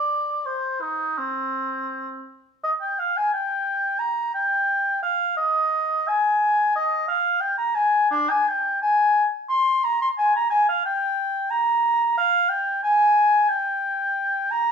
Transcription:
Already playing: D5
0.46 C5
0.82 D#4
1.18 C4
2.64 D#5
2.81 G5
3.00 F5
3.17 G#5
3.33 G5
4.00 A#5
4.34 G5
5.03 F5
5.37 D#5
6.08 G#5
6.76 D#5
7.08 F5
7.41 G5
7.58 A#5
7.75 G#5
8.11 D4
8.31 G#5
8.48 G5
8.82 G#5
9.50 C6
9.84 A#5
10.02 C6
10.18 G#5
10.36 A#5
10.50 G#5
10.69 F5
10.86 G5
11.51 A#5
12.18 F5
12.50 G5
12.83 G#5
13.49 G5
14.51 A#5

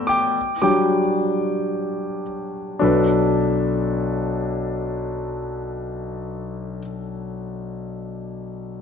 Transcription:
Already playing: A3 B3 F#4 D5 G5 A5 B5 E6
0.07 G5 D6
0.62 F#3 G3 D4 G5 D6
2.79 B1 D4 A4
2.84 B4

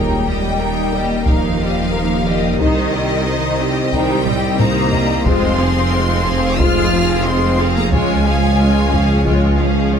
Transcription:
Already playing: D#1 D#2 G3 A#3 D#4 G4 A#4 G5
0.26 G3 A#3 G4 D#5
0.59 A#3 D#4 A#4
0.93 G3 A#3 G4 D#5
1.26 F3 G3 A#3 D#4 A#4 F5, taiko
1.60 G3 A#3 G4 D#5
1.92 A#3 D#4 A#4
2.26 G3 A#3 G4 D#5
2.59 C2 D#3 G3 D#4 C5 D#5, taiko
2.94 G3 C4 G4 D#5
3.27 D#3 D#4 C5
3.59 G3 C4 G4 D#5
3.93 D#3 G3 D#4 C5 G5, taiko
4.26 G3 C4 G4 D#5, taiko low-mid
4.59 D#3 A#3 D#4 C5 A#5, taiko low-mid
4.93 G3 C4 G4 D#5, taiko low
5.26 F1 F2 F3 G#3 C4 F4 G#4 C5 C6, taiko
5.59 F3 C4 G#4 F5
5.93 G#3 F4 C5
6.26 F3 C4 G#4 F5, taiko low
6.59 G#3 F4 C5 F6, taiko
6.93 F3 C4 G#4 F5
7.25 G#3 C4 F4 C5 C6
7.60 F3 C4 G#4 F5
7.76 A#3 A#5
7.92 C#2 G#3 F4 C#5 G#5, taiko
8.27 F3 C#4 G#4 F5
8.59 G#3 F4 C#5
8.93 F3 C#4 G#4 F5, taiko low
9.25 G#3 F4 C#5, taiko
9.59 F3 C#4 G#4 F5
9.92 G#3 F4 C#5

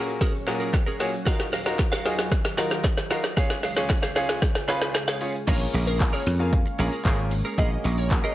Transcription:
Already playing: A#2 F#3 C#4 F#4 G#4 A#4 C#5
0.08 muted clean electric guitar stroke, shaker
0.21 C#4 G#4 A#4, kick, snare, closed hi-hat, shaker
0.34 muted clean electric guitar stroke, shaker
0.47 A#2 C#4 F#4 G#4 A#4, muted clean electric guitar stroke, snare, clap, open hi-hat, shaker
0.60 C#4 G#4 A#4, shaker
0.74 kick, snare, clap, closed hi-hat, shaker
0.86 C#4 G#4 A#4, shaker
0.99 A#2 C#4 F#4 G#4 A#4 C#5, snare, open hi-hat, shaker
1.12 muted clean electric guitar stroke, shaker
1.25 D#2 D#3 D#4 F4 F#4 A#4 F5, kick, snare, closed hi-hat, shaker
1.39 muted clean electric guitar stroke, snare, shaker
1.52 F#4 A#4 F5, snare, open hi-hat, shaker
1.65 D#4 F4 F#4 A#4 F5, snare, shaker
1.79 muted clean electric guitar stroke, kick, snare, clap, closed hi-hat, shaker
1.92 F#4 A#4 F5, snare, shaker
2.05 D#4 F4 F#4 G#4 A#4 F5, snare, open hi-hat, shaker
2.18 muted clean electric guitar stroke, snare, shaker
2.31 muted clean electric guitar stroke, kick, snare, closed hi-hat, shaker
2.45 muted clean electric guitar stroke, snare, shaker
2.58 D#4 F4 F#4 A#4 F5, snare, clap, open hi-hat, shaker
2.71 muted clean electric guitar stroke, snare, shaker
2.84 kick, snare, clap, closed hi-hat, shaker
2.97 muted clean electric guitar stroke, snare, shaker
3.10 D#4 F4 F#4 A#4 F5, snare, open hi-hat, shaker
3.24 muted clean electric guitar stroke, snare, shaker
3.37 C#2 C#3 G#3 C#4 F4 G#4 C#5 F5, kick, snare, closed hi-hat, shaker
3.50 muted clean electric guitar stroke, snare, shaker
3.63 G#4 C#5 F5, snare, open hi-hat, shaker
3.76 C#4 F4 G#4 C#5 F5, snare, shaker
3.90 kick, snare, clap, closed hi-hat, shaker
4.02 G#4 C#5 F5, snare, shaker
4.15 C#4 F4 G#4 C#5 F5, snare, open hi-hat, shaker
4.29 muted clean electric guitar stroke, snare, shaker
4.42 muted clean electric guitar stroke, kick, snare, closed hi-hat, shaker
4.55 muted clean electric guitar stroke, snare, shaker
4.68 C#4 F4 G#4 B4 C#5 F5, snare, clap, open hi-hat, shaker
4.82 muted clean electric guitar stroke, snare, shaker
4.94 muted clean electric guitar stroke, snare, clap, closed hi-hat, shaker
5.08 G#4 C#5 F5, snare, shaker
5.21 C#4 F4 G#4 C#5 F5, open hi-hat, shaker
5.34 muted clean electric guitar stroke, shaker
5.47 A#1 G#3 A#3 C#4 F4 G#4 A#4 C#5, kick, closed hi-hat, crash, shaker
5.61 muted clean electric guitar stroke, shaker
5.73 A#1 C#4 G#4 A#4, open hi-hat, shaker
5.87 C#4 G#4 A#4, shaker
6.00 A#3 C#4 F4 G#4 A#4, kick, clap, closed hi-hat, shaker
6.13 C#4 G#4 A#4 C#5, shaker
6.26 F2, open hi-hat, shaker
6.39 A#3 C#4 F4 G#4 A#4 F5, muted clean electric guitar stroke, shaker
6.53 muted clean electric guitar stroke, kick, closed hi-hat, shaker
6.66 muted clean electric guitar stroke, shaker
6.79 A#1 A#3 C#4 F4 G#4 A#4, open hi-hat, shaker
6.92 C#4 G#4 A#4, shaker
7.05 G#1 A#3 C#4 F4 G#4 A#4, kick, clap, closed hi-hat, shaker
7.18 muted clean electric guitar stroke, shaker
7.31 muted clean electric guitar stroke, open hi-hat, shaker
7.45 C#4 G#4 A#4, shaker
7.58 A#1 A#3 C#4 F#4 G#4 A#4 D#5, kick, closed hi-hat, shaker
7.71 muted clean electric guitar stroke, shaker
7.84 A#1 C#4 G#4 A#4, open hi-hat, shaker
7.97 C#4 G#4 A#4 C#5, shaker
8.11 A#3 C#4 F#4 G#4 A#4, muted clean electric guitar stroke, kick, clap, closed hi-hat, shaker
8.24 C#4 G#4 A#4 D#5, shaker

